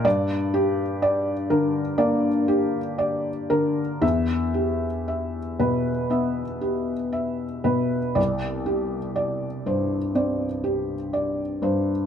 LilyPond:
<<
  \new Staff \with { instrumentName = "Felt piano" } { \time 4/4 \key c \major \tempo 4 = 60 << { d''4 r2. | e''4 r2. | d''4 r2. | } \\ { r8 g'8 d''8 bes'8 d''8 g'8 d''8 bes'8 | r8 g'8 e''8 b'8 e''8 g'8 e''8 b'8 | r8 g'8 d''8 c''8 d''8 g'8 d''8 c''8 | } >> }
  \new Staff \with { instrumentName = "Felt piano" } { \clef bass \time 4/4 \key c \major g,4. d8 bes4 r8 d8 | e,4. b,8 b4 r8 b,8 | c,4. g,8 c'4 r8 g,8 | }
>>